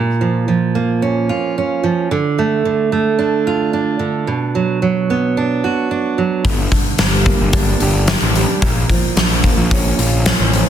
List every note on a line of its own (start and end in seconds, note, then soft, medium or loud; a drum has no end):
0.00 1.29 A#2 medium
0.21 0.47 F3 medium
0.48 1.82 F3 medium
0.75 2.11 A#3 medium
1.02 1.57 C#4 medium
1.29 2.11 F4 medium
1.58 2.11 C#4 medium
1.84 2.11 F3 medium
2.11 2.64 D3 medium
2.39 2.91 A3 medium
2.65 3.98 D3 medium
2.92 4.28 A3 medium
3.19 3.73 D4 medium
3.47 4.28 F4 medium
3.73 5.37 D4 medium
3.99 4.27 D3 medium
4.27 5.63 B2 medium
4.55 4.81 F#3 medium
4.82 6.17 F#3 medium
5.10 6.46 B3 medium
5.37 5.90 D4 medium
5.64 6.45 F#4 medium
5.91 6.45 D4 medium
6.18 6.45 F#3 medium
6.45 6.67 G1 medium
6.45 7.81 G2 medium
6.45 kick loud
6.45 open hi-hat medium
6.72 8.08 D3 medium
6.72 kick medium
6.72 open hi-hat soft
6.99 7.32 G1 medium
6.99 8.35 G3 medium
6.99 snare medium
6.99 open hi-hat medium
7.26 8.63 A#3 medium
7.26 kick medium
7.26 open hi-hat soft
7.41 7.73 G1 medium
7.53 8.08 D4 medium
7.53 kick loud
7.53 open hi-hat medium
7.80 8.14 G1 medium
7.80 8.63 G4 medium
7.80 open hi-hat soft
8.08 8.63 D4 medium
8.08 snare loud
8.08 open hi-hat medium
8.22 8.44 A1 medium
8.35 8.63 G3 medium
8.35 open hi-hat medium
8.62 8.84 A#1 medium
8.62 9.99 A#2 medium
8.62 kick medium
8.62 open hi-hat medium
8.89 9.17 F3 medium
8.89 kick medium
8.89 open hi-hat soft
9.17 9.50 A#1 medium
9.17 10.53 F3 medium
9.17 snare medium
9.17 open hi-hat medium
9.44 10.69 A#3 medium
9.44 kick medium
9.44 open hi-hat soft
9.57 9.90 A#1 medium
9.71 10.25 C#4 medium
9.71 kick loud
9.71 open hi-hat medium
9.98 10.31 A#1 medium
9.98 10.69 F4 medium
9.98 open hi-hat soft
10.26 10.69 C#4 medium
10.26 snare loud
10.26 open hi-hat medium
10.40 10.61 A1 medium
10.53 10.69 F3 medium
10.53 open hi-hat soft